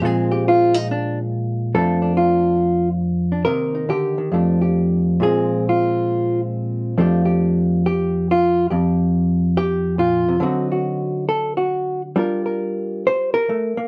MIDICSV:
0, 0, Header, 1, 2, 480
1, 0, Start_track
1, 0, Tempo, 429185
1, 36, Time_signature, 4, 2, 24, 8
1, 4356, Tempo, 439560
1, 7716, Tempo, 430108
1, 12036, Tempo, 439883
1, 15348, End_track
2, 0, Start_track
2, 0, Title_t, "Hollow-body jazz guitar"
2, 0, Program_c, 0, 26
2, 19, Note_on_c, 0, 46, 76
2, 36, Note_on_c, 0, 56, 51
2, 38, Note_on_c, 0, 53, 47
2, 50, Note_on_c, 0, 60, 49
2, 55, Note_on_c, 0, 68, 88
2, 348, Note_off_c, 0, 68, 0
2, 353, Note_on_c, 0, 67, 80
2, 524, Note_off_c, 0, 67, 0
2, 538, Note_on_c, 0, 65, 87
2, 831, Note_off_c, 0, 60, 0
2, 831, Note_on_c, 0, 63, 94
2, 844, Note_off_c, 0, 65, 0
2, 1003, Note_off_c, 0, 63, 0
2, 1021, Note_on_c, 0, 62, 74
2, 1320, Note_off_c, 0, 62, 0
2, 1936, Note_off_c, 0, 53, 0
2, 1946, Note_off_c, 0, 46, 0
2, 1952, Note_on_c, 0, 41, 79
2, 1954, Note_off_c, 0, 56, 0
2, 1955, Note_on_c, 0, 69, 78
2, 1963, Note_on_c, 0, 53, 55
2, 1968, Note_on_c, 0, 57, 54
2, 1984, Note_on_c, 0, 62, 52
2, 2245, Note_off_c, 0, 62, 0
2, 2259, Note_on_c, 0, 62, 54
2, 2423, Note_off_c, 0, 69, 0
2, 2427, Note_on_c, 0, 65, 71
2, 3222, Note_off_c, 0, 65, 0
2, 3700, Note_off_c, 0, 62, 0
2, 3713, Note_on_c, 0, 62, 46
2, 3855, Note_on_c, 0, 70, 93
2, 3856, Note_off_c, 0, 53, 0
2, 3856, Note_off_c, 0, 62, 0
2, 3858, Note_off_c, 0, 57, 0
2, 3867, Note_on_c, 0, 48, 69
2, 3870, Note_off_c, 0, 41, 0
2, 3873, Note_on_c, 0, 51, 49
2, 3877, Note_on_c, 0, 58, 51
2, 3883, Note_on_c, 0, 63, 50
2, 4178, Note_off_c, 0, 63, 0
2, 4191, Note_on_c, 0, 63, 46
2, 4344, Note_off_c, 0, 48, 0
2, 4348, Note_off_c, 0, 70, 0
2, 4349, Note_on_c, 0, 50, 60
2, 4359, Note_on_c, 0, 67, 86
2, 4654, Note_off_c, 0, 51, 0
2, 4661, Note_off_c, 0, 50, 0
2, 4667, Note_on_c, 0, 51, 50
2, 4813, Note_off_c, 0, 58, 0
2, 4817, Note_off_c, 0, 63, 0
2, 4817, Note_on_c, 0, 41, 67
2, 4830, Note_off_c, 0, 51, 0
2, 4834, Note_on_c, 0, 53, 46
2, 4837, Note_on_c, 0, 57, 45
2, 4845, Note_on_c, 0, 62, 45
2, 5130, Note_off_c, 0, 67, 0
2, 5143, Note_on_c, 0, 67, 50
2, 5781, Note_off_c, 0, 57, 0
2, 5781, Note_on_c, 0, 46, 67
2, 5792, Note_off_c, 0, 41, 0
2, 5795, Note_off_c, 0, 53, 0
2, 5800, Note_on_c, 0, 53, 48
2, 5805, Note_on_c, 0, 56, 46
2, 5808, Note_off_c, 0, 62, 0
2, 5811, Note_off_c, 0, 67, 0
2, 5812, Note_on_c, 0, 60, 48
2, 5815, Note_on_c, 0, 68, 83
2, 6286, Note_off_c, 0, 68, 0
2, 6317, Note_on_c, 0, 65, 74
2, 7089, Note_off_c, 0, 65, 0
2, 7708, Note_off_c, 0, 46, 0
2, 7719, Note_off_c, 0, 56, 0
2, 7721, Note_on_c, 0, 41, 73
2, 7723, Note_off_c, 0, 53, 0
2, 7727, Note_on_c, 0, 53, 56
2, 7732, Note_on_c, 0, 57, 52
2, 7738, Note_off_c, 0, 60, 0
2, 7743, Note_on_c, 0, 62, 49
2, 7752, Note_on_c, 0, 67, 52
2, 8027, Note_off_c, 0, 67, 0
2, 8031, Note_on_c, 0, 67, 53
2, 8705, Note_off_c, 0, 67, 0
2, 8709, Note_on_c, 0, 67, 80
2, 9184, Note_off_c, 0, 67, 0
2, 9212, Note_on_c, 0, 65, 84
2, 9640, Note_off_c, 0, 53, 0
2, 9645, Note_off_c, 0, 65, 0
2, 9646, Note_off_c, 0, 41, 0
2, 9650, Note_on_c, 0, 67, 55
2, 9659, Note_on_c, 0, 41, 85
2, 9683, Note_off_c, 0, 57, 0
2, 10601, Note_off_c, 0, 67, 0
2, 10619, Note_on_c, 0, 67, 103
2, 11075, Note_on_c, 0, 46, 56
2, 11081, Note_off_c, 0, 67, 0
2, 11086, Note_on_c, 0, 65, 84
2, 11386, Note_off_c, 0, 46, 0
2, 11413, Note_on_c, 0, 48, 57
2, 11447, Note_off_c, 0, 62, 0
2, 11537, Note_off_c, 0, 48, 0
2, 11542, Note_on_c, 0, 50, 76
2, 11548, Note_on_c, 0, 54, 53
2, 11558, Note_off_c, 0, 41, 0
2, 11560, Note_off_c, 0, 65, 0
2, 11567, Note_on_c, 0, 60, 53
2, 11572, Note_on_c, 0, 63, 51
2, 11577, Note_on_c, 0, 66, 55
2, 11877, Note_off_c, 0, 66, 0
2, 11895, Note_on_c, 0, 66, 49
2, 12516, Note_off_c, 0, 66, 0
2, 12520, Note_on_c, 0, 69, 82
2, 12826, Note_off_c, 0, 69, 0
2, 12830, Note_on_c, 0, 66, 64
2, 13312, Note_off_c, 0, 66, 0
2, 13455, Note_off_c, 0, 50, 0
2, 13458, Note_off_c, 0, 54, 0
2, 13468, Note_off_c, 0, 60, 0
2, 13471, Note_off_c, 0, 63, 0
2, 13471, Note_on_c, 0, 55, 75
2, 13476, Note_on_c, 0, 62, 51
2, 13492, Note_on_c, 0, 65, 47
2, 13506, Note_on_c, 0, 70, 49
2, 13794, Note_off_c, 0, 70, 0
2, 13798, Note_on_c, 0, 70, 47
2, 14460, Note_off_c, 0, 70, 0
2, 14464, Note_on_c, 0, 72, 85
2, 14755, Note_off_c, 0, 72, 0
2, 14760, Note_on_c, 0, 70, 97
2, 14923, Note_off_c, 0, 55, 0
2, 14928, Note_on_c, 0, 57, 63
2, 15230, Note_off_c, 0, 57, 0
2, 15233, Note_off_c, 0, 70, 0
2, 15234, Note_on_c, 0, 58, 66
2, 15348, Note_off_c, 0, 58, 0
2, 15348, Note_off_c, 0, 62, 0
2, 15348, Note_off_c, 0, 65, 0
2, 15348, End_track
0, 0, End_of_file